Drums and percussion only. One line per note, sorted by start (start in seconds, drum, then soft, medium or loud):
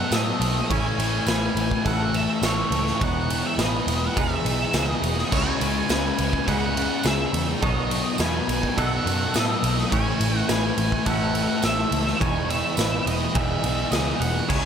0.12 snare loud
0.12 ride loud
0.12 tambourine loud
0.42 ride medium
0.70 kick loud
0.70 ride medium
1.00 ride medium
1.27 snare loud
1.27 ride medium
1.27 tambourine medium
1.57 ride medium
1.71 kick medium
1.86 kick loud
1.86 ride medium
2.14 ride medium
2.43 snare loud
2.43 ride medium
2.43 tambourine loud
2.72 ride medium
2.87 snare soft
3.01 kick loud
3.01 ride medium
3.30 ride medium
3.59 snare loud
3.59 ride loud
3.59 tambourine medium
3.88 ride medium
4.17 kick loud
4.17 ride loud
4.46 ride medium
4.73 snare loud
4.73 ride loud
4.73 tambourine medium
5.03 ride medium
5.19 snare soft
5.32 kick loud
5.32 crash loud
5.61 ride medium
5.89 snare loud
5.89 ride loud
5.89 tambourine loud
6.18 ride medium
6.33 kick medium
6.48 kick loud
6.48 ride loud
6.77 ride medium
7.04 snare loud
7.04 ride medium
7.04 tambourine loud
7.34 ride medium
7.62 kick loud
7.62 ride medium
7.91 ride medium
8.18 snare loud
8.18 ride loud
8.18 tambourine medium
8.49 ride medium
8.63 kick medium
8.78 kick loud
8.78 ride loud
9.07 ride medium
9.34 snare loud
9.34 ride loud
9.34 tambourine medium
9.64 ride medium
9.78 snare soft
9.92 kick loud
9.92 ride loud
10.21 ride medium
10.49 snare loud
10.49 ride loud
10.49 tambourine loud
10.78 ride medium
10.92 kick medium
11.06 kick loud
11.06 ride loud
11.35 ride medium
11.62 snare loud
11.62 ride medium
11.62 tambourine loud
11.92 ride medium
12.07 snare soft
12.21 kick loud
12.21 ride medium
12.50 ride medium
12.77 snare loud
12.77 ride medium
12.77 tambourine loud
13.07 ride medium
13.35 kick loud
13.35 ride loud
13.64 ride medium
13.92 snare loud
13.92 ride loud
13.92 tambourine loud
14.22 ride medium
14.50 kick loud
14.50 crash loud